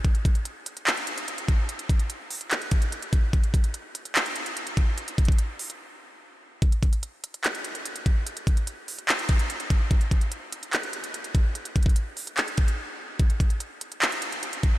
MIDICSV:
0, 0, Header, 1, 2, 480
1, 0, Start_track
1, 0, Tempo, 410959
1, 53, Time_signature, 4, 2, 24, 8
1, 17267, End_track
2, 0, Start_track
2, 0, Title_t, "Drums"
2, 52, Note_on_c, 9, 42, 71
2, 53, Note_on_c, 9, 36, 123
2, 169, Note_off_c, 9, 42, 0
2, 170, Note_off_c, 9, 36, 0
2, 173, Note_on_c, 9, 42, 59
2, 289, Note_off_c, 9, 42, 0
2, 293, Note_on_c, 9, 36, 101
2, 296, Note_on_c, 9, 42, 76
2, 410, Note_off_c, 9, 36, 0
2, 411, Note_off_c, 9, 42, 0
2, 411, Note_on_c, 9, 42, 57
2, 527, Note_off_c, 9, 42, 0
2, 530, Note_on_c, 9, 42, 92
2, 647, Note_off_c, 9, 42, 0
2, 773, Note_on_c, 9, 42, 93
2, 890, Note_off_c, 9, 42, 0
2, 896, Note_on_c, 9, 42, 53
2, 1013, Note_off_c, 9, 42, 0
2, 1014, Note_on_c, 9, 39, 117
2, 1015, Note_on_c, 9, 42, 90
2, 1131, Note_off_c, 9, 39, 0
2, 1131, Note_off_c, 9, 42, 0
2, 1137, Note_on_c, 9, 42, 58
2, 1250, Note_off_c, 9, 42, 0
2, 1250, Note_on_c, 9, 42, 78
2, 1367, Note_off_c, 9, 42, 0
2, 1373, Note_on_c, 9, 42, 58
2, 1490, Note_off_c, 9, 42, 0
2, 1494, Note_on_c, 9, 42, 79
2, 1611, Note_off_c, 9, 42, 0
2, 1613, Note_on_c, 9, 42, 58
2, 1730, Note_off_c, 9, 42, 0
2, 1733, Note_on_c, 9, 42, 77
2, 1734, Note_on_c, 9, 36, 101
2, 1850, Note_off_c, 9, 42, 0
2, 1851, Note_off_c, 9, 36, 0
2, 1973, Note_on_c, 9, 42, 72
2, 2090, Note_off_c, 9, 42, 0
2, 2092, Note_on_c, 9, 42, 59
2, 2209, Note_off_c, 9, 42, 0
2, 2213, Note_on_c, 9, 36, 98
2, 2215, Note_on_c, 9, 42, 77
2, 2330, Note_off_c, 9, 36, 0
2, 2330, Note_off_c, 9, 42, 0
2, 2330, Note_on_c, 9, 42, 60
2, 2447, Note_off_c, 9, 42, 0
2, 2450, Note_on_c, 9, 42, 89
2, 2566, Note_off_c, 9, 42, 0
2, 2692, Note_on_c, 9, 46, 93
2, 2809, Note_off_c, 9, 46, 0
2, 2814, Note_on_c, 9, 42, 53
2, 2931, Note_off_c, 9, 42, 0
2, 2933, Note_on_c, 9, 39, 118
2, 2933, Note_on_c, 9, 42, 87
2, 3049, Note_off_c, 9, 39, 0
2, 3050, Note_off_c, 9, 42, 0
2, 3055, Note_on_c, 9, 42, 58
2, 3169, Note_off_c, 9, 42, 0
2, 3169, Note_on_c, 9, 42, 76
2, 3173, Note_on_c, 9, 36, 98
2, 3285, Note_off_c, 9, 42, 0
2, 3290, Note_off_c, 9, 36, 0
2, 3292, Note_on_c, 9, 42, 58
2, 3409, Note_off_c, 9, 42, 0
2, 3414, Note_on_c, 9, 42, 81
2, 3531, Note_off_c, 9, 42, 0
2, 3533, Note_on_c, 9, 42, 59
2, 3650, Note_off_c, 9, 42, 0
2, 3652, Note_on_c, 9, 42, 78
2, 3653, Note_on_c, 9, 36, 101
2, 3769, Note_off_c, 9, 42, 0
2, 3770, Note_off_c, 9, 36, 0
2, 3893, Note_on_c, 9, 36, 119
2, 3893, Note_on_c, 9, 42, 72
2, 4009, Note_off_c, 9, 36, 0
2, 4010, Note_off_c, 9, 42, 0
2, 4013, Note_on_c, 9, 42, 62
2, 4129, Note_off_c, 9, 42, 0
2, 4133, Note_on_c, 9, 36, 98
2, 4136, Note_on_c, 9, 42, 78
2, 4249, Note_off_c, 9, 36, 0
2, 4250, Note_off_c, 9, 42, 0
2, 4250, Note_on_c, 9, 42, 61
2, 4367, Note_off_c, 9, 42, 0
2, 4369, Note_on_c, 9, 42, 85
2, 4486, Note_off_c, 9, 42, 0
2, 4613, Note_on_c, 9, 42, 90
2, 4730, Note_off_c, 9, 42, 0
2, 4735, Note_on_c, 9, 42, 53
2, 4852, Note_off_c, 9, 42, 0
2, 4853, Note_on_c, 9, 39, 119
2, 4854, Note_on_c, 9, 42, 86
2, 4970, Note_off_c, 9, 39, 0
2, 4971, Note_off_c, 9, 42, 0
2, 4975, Note_on_c, 9, 42, 60
2, 5088, Note_off_c, 9, 42, 0
2, 5088, Note_on_c, 9, 42, 78
2, 5204, Note_off_c, 9, 42, 0
2, 5211, Note_on_c, 9, 42, 60
2, 5327, Note_off_c, 9, 42, 0
2, 5334, Note_on_c, 9, 42, 80
2, 5450, Note_off_c, 9, 42, 0
2, 5451, Note_on_c, 9, 42, 60
2, 5568, Note_off_c, 9, 42, 0
2, 5573, Note_on_c, 9, 36, 97
2, 5573, Note_on_c, 9, 42, 78
2, 5689, Note_off_c, 9, 42, 0
2, 5690, Note_off_c, 9, 36, 0
2, 5812, Note_on_c, 9, 42, 72
2, 5929, Note_off_c, 9, 42, 0
2, 5932, Note_on_c, 9, 42, 61
2, 6049, Note_off_c, 9, 42, 0
2, 6052, Note_on_c, 9, 36, 101
2, 6052, Note_on_c, 9, 42, 80
2, 6133, Note_off_c, 9, 42, 0
2, 6133, Note_on_c, 9, 42, 63
2, 6169, Note_off_c, 9, 36, 0
2, 6173, Note_on_c, 9, 36, 106
2, 6213, Note_off_c, 9, 42, 0
2, 6213, Note_on_c, 9, 42, 46
2, 6290, Note_off_c, 9, 36, 0
2, 6290, Note_off_c, 9, 42, 0
2, 6290, Note_on_c, 9, 42, 91
2, 6406, Note_off_c, 9, 42, 0
2, 6533, Note_on_c, 9, 46, 92
2, 6650, Note_off_c, 9, 46, 0
2, 6655, Note_on_c, 9, 42, 55
2, 6772, Note_off_c, 9, 42, 0
2, 7733, Note_on_c, 9, 36, 115
2, 7733, Note_on_c, 9, 42, 70
2, 7850, Note_off_c, 9, 36, 0
2, 7850, Note_off_c, 9, 42, 0
2, 7852, Note_on_c, 9, 42, 59
2, 7969, Note_off_c, 9, 42, 0
2, 7973, Note_on_c, 9, 36, 93
2, 7976, Note_on_c, 9, 42, 72
2, 8089, Note_off_c, 9, 36, 0
2, 8091, Note_off_c, 9, 42, 0
2, 8091, Note_on_c, 9, 42, 57
2, 8208, Note_off_c, 9, 42, 0
2, 8210, Note_on_c, 9, 42, 82
2, 8326, Note_off_c, 9, 42, 0
2, 8453, Note_on_c, 9, 42, 91
2, 8570, Note_off_c, 9, 42, 0
2, 8575, Note_on_c, 9, 42, 52
2, 8692, Note_off_c, 9, 42, 0
2, 8693, Note_on_c, 9, 39, 113
2, 8693, Note_on_c, 9, 42, 85
2, 8809, Note_off_c, 9, 39, 0
2, 8810, Note_off_c, 9, 42, 0
2, 8815, Note_on_c, 9, 42, 56
2, 8929, Note_off_c, 9, 42, 0
2, 8929, Note_on_c, 9, 42, 76
2, 9045, Note_off_c, 9, 42, 0
2, 9052, Note_on_c, 9, 42, 58
2, 9169, Note_off_c, 9, 42, 0
2, 9175, Note_on_c, 9, 42, 80
2, 9291, Note_off_c, 9, 42, 0
2, 9292, Note_on_c, 9, 42, 55
2, 9409, Note_off_c, 9, 42, 0
2, 9414, Note_on_c, 9, 36, 96
2, 9414, Note_on_c, 9, 42, 77
2, 9530, Note_off_c, 9, 42, 0
2, 9531, Note_off_c, 9, 36, 0
2, 9654, Note_on_c, 9, 42, 73
2, 9771, Note_off_c, 9, 42, 0
2, 9773, Note_on_c, 9, 42, 60
2, 9890, Note_off_c, 9, 42, 0
2, 9893, Note_on_c, 9, 36, 96
2, 9896, Note_on_c, 9, 42, 74
2, 10010, Note_off_c, 9, 36, 0
2, 10010, Note_off_c, 9, 42, 0
2, 10010, Note_on_c, 9, 42, 57
2, 10127, Note_off_c, 9, 42, 0
2, 10129, Note_on_c, 9, 42, 85
2, 10246, Note_off_c, 9, 42, 0
2, 10373, Note_on_c, 9, 46, 88
2, 10490, Note_off_c, 9, 46, 0
2, 10495, Note_on_c, 9, 42, 50
2, 10612, Note_off_c, 9, 42, 0
2, 10613, Note_on_c, 9, 39, 116
2, 10614, Note_on_c, 9, 42, 82
2, 10730, Note_off_c, 9, 39, 0
2, 10731, Note_off_c, 9, 42, 0
2, 10735, Note_on_c, 9, 42, 56
2, 10848, Note_off_c, 9, 42, 0
2, 10848, Note_on_c, 9, 42, 76
2, 10853, Note_on_c, 9, 36, 95
2, 10965, Note_off_c, 9, 42, 0
2, 10970, Note_off_c, 9, 36, 0
2, 10972, Note_on_c, 9, 42, 57
2, 11089, Note_off_c, 9, 42, 0
2, 11094, Note_on_c, 9, 42, 75
2, 11211, Note_off_c, 9, 42, 0
2, 11212, Note_on_c, 9, 42, 56
2, 11328, Note_off_c, 9, 42, 0
2, 11333, Note_on_c, 9, 36, 94
2, 11333, Note_on_c, 9, 42, 76
2, 11450, Note_off_c, 9, 36, 0
2, 11450, Note_off_c, 9, 42, 0
2, 11572, Note_on_c, 9, 42, 72
2, 11573, Note_on_c, 9, 36, 120
2, 11689, Note_off_c, 9, 42, 0
2, 11690, Note_off_c, 9, 36, 0
2, 11691, Note_on_c, 9, 42, 58
2, 11808, Note_off_c, 9, 42, 0
2, 11812, Note_on_c, 9, 36, 97
2, 11814, Note_on_c, 9, 42, 78
2, 11929, Note_off_c, 9, 36, 0
2, 11929, Note_off_c, 9, 42, 0
2, 11929, Note_on_c, 9, 42, 55
2, 12045, Note_off_c, 9, 42, 0
2, 12049, Note_on_c, 9, 42, 87
2, 12166, Note_off_c, 9, 42, 0
2, 12293, Note_on_c, 9, 42, 87
2, 12409, Note_off_c, 9, 42, 0
2, 12414, Note_on_c, 9, 42, 53
2, 12531, Note_off_c, 9, 42, 0
2, 12532, Note_on_c, 9, 39, 115
2, 12533, Note_on_c, 9, 42, 83
2, 12649, Note_off_c, 9, 39, 0
2, 12650, Note_off_c, 9, 42, 0
2, 12654, Note_on_c, 9, 42, 56
2, 12768, Note_off_c, 9, 42, 0
2, 12768, Note_on_c, 9, 42, 74
2, 12885, Note_off_c, 9, 42, 0
2, 12891, Note_on_c, 9, 42, 58
2, 13008, Note_off_c, 9, 42, 0
2, 13014, Note_on_c, 9, 42, 79
2, 13131, Note_off_c, 9, 42, 0
2, 13132, Note_on_c, 9, 42, 56
2, 13249, Note_off_c, 9, 42, 0
2, 13252, Note_on_c, 9, 42, 77
2, 13253, Note_on_c, 9, 36, 96
2, 13369, Note_off_c, 9, 42, 0
2, 13370, Note_off_c, 9, 36, 0
2, 13492, Note_on_c, 9, 42, 72
2, 13609, Note_off_c, 9, 42, 0
2, 13611, Note_on_c, 9, 42, 58
2, 13728, Note_off_c, 9, 42, 0
2, 13732, Note_on_c, 9, 36, 96
2, 13732, Note_on_c, 9, 42, 74
2, 13813, Note_off_c, 9, 42, 0
2, 13813, Note_on_c, 9, 42, 63
2, 13849, Note_off_c, 9, 36, 0
2, 13852, Note_on_c, 9, 36, 103
2, 13892, Note_off_c, 9, 42, 0
2, 13892, Note_on_c, 9, 42, 44
2, 13969, Note_off_c, 9, 36, 0
2, 13969, Note_off_c, 9, 42, 0
2, 13969, Note_on_c, 9, 42, 86
2, 14085, Note_off_c, 9, 42, 0
2, 14212, Note_on_c, 9, 46, 85
2, 14329, Note_off_c, 9, 46, 0
2, 14334, Note_on_c, 9, 42, 53
2, 14450, Note_off_c, 9, 42, 0
2, 14452, Note_on_c, 9, 39, 114
2, 14453, Note_on_c, 9, 42, 83
2, 14569, Note_off_c, 9, 39, 0
2, 14570, Note_off_c, 9, 42, 0
2, 14574, Note_on_c, 9, 42, 57
2, 14687, Note_off_c, 9, 42, 0
2, 14687, Note_on_c, 9, 42, 72
2, 14692, Note_on_c, 9, 36, 97
2, 14804, Note_off_c, 9, 42, 0
2, 14809, Note_off_c, 9, 36, 0
2, 14811, Note_on_c, 9, 42, 59
2, 14928, Note_off_c, 9, 42, 0
2, 15411, Note_on_c, 9, 42, 72
2, 15412, Note_on_c, 9, 36, 121
2, 15528, Note_off_c, 9, 42, 0
2, 15529, Note_off_c, 9, 36, 0
2, 15532, Note_on_c, 9, 42, 61
2, 15649, Note_off_c, 9, 42, 0
2, 15652, Note_on_c, 9, 36, 93
2, 15655, Note_on_c, 9, 42, 73
2, 15769, Note_off_c, 9, 36, 0
2, 15770, Note_off_c, 9, 42, 0
2, 15770, Note_on_c, 9, 42, 57
2, 15887, Note_off_c, 9, 42, 0
2, 15889, Note_on_c, 9, 42, 88
2, 16006, Note_off_c, 9, 42, 0
2, 16133, Note_on_c, 9, 42, 90
2, 16249, Note_off_c, 9, 42, 0
2, 16255, Note_on_c, 9, 42, 52
2, 16372, Note_off_c, 9, 42, 0
2, 16373, Note_on_c, 9, 39, 113
2, 16374, Note_on_c, 9, 42, 86
2, 16490, Note_off_c, 9, 39, 0
2, 16491, Note_off_c, 9, 42, 0
2, 16494, Note_on_c, 9, 42, 56
2, 16607, Note_off_c, 9, 42, 0
2, 16607, Note_on_c, 9, 42, 78
2, 16724, Note_off_c, 9, 42, 0
2, 16731, Note_on_c, 9, 42, 58
2, 16848, Note_off_c, 9, 42, 0
2, 16852, Note_on_c, 9, 42, 79
2, 16969, Note_off_c, 9, 42, 0
2, 16970, Note_on_c, 9, 42, 59
2, 17087, Note_off_c, 9, 42, 0
2, 17091, Note_on_c, 9, 42, 78
2, 17092, Note_on_c, 9, 36, 96
2, 17208, Note_off_c, 9, 42, 0
2, 17209, Note_off_c, 9, 36, 0
2, 17267, End_track
0, 0, End_of_file